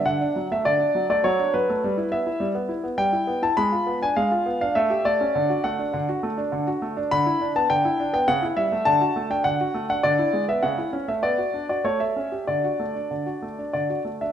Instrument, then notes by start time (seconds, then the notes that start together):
grand piano
0.06 D3 F#5
0.21 D4
0.36 F#3
0.51 A3 E5
0.65 D3 D5
0.80 D4
0.95 F#3
1.10 A3 D5
1.24 F#3 C#5
1.39 D4
1.54 F#3 B4
1.69 A3
1.84 G3
1.98 E4
2.12 B3 E5
2.27 E4
2.40 G3
2.55 B3
2.69 E4
2.84 B3
2.98 G3 G5
3.13 E4
3.27 B3
3.42 E4 A5
3.57 G#3 B5
3.72 F4
3.87 B3
4.02 D4 G#5
4.16 G#3 F5
4.31 F4
4.46 B3
4.61 D4 F5
4.75 A3 E5
4.90 G4
5.05 A3 D5
5.21 C#4
5.35 D3
5.50 F#4
5.64 A3 F#5
5.79 D4
5.94 D3
6.09 F#4
6.23 A3
6.38 D4
6.52 D3
6.67 F#4
6.82 A3
6.97 D4
7.11 D3 B5
7.26 E4
7.41 D4
7.56 B3 A5
7.70 D3 G5
7.85 E4
8.00 D4
8.13 B3 G5
8.28 C#3 F#5
8.42 E4
8.57 G3 E5
8.72 A3
8.85 D3 A5
9.01 F#4
9.16 A3
9.30 D4 G5
9.44 D3 F#5
9.61 F#4
9.74 A3
9.89 D4 F#5
10.03 D3 D5
10.19 E4
10.33 G#3
10.48 B3 E5
10.63 C#3 F#5
10.78 E4
10.93 C#4
11.08 A3 E5
11.23 B3 D5
11.38 F#4
11.54 D4
11.69 F#4 D5
11.85 A3 C#5
12.00 A4 E5
12.16 C#4
12.32 G4
12.47 D3 D5
12.64 F#4
12.80 A3
12.95 D4
13.11 D3
13.26 F#4
13.42 A3
13.59 D4
13.73 D3 D5
13.90 F#4
14.05 A3
14.21 D4 E5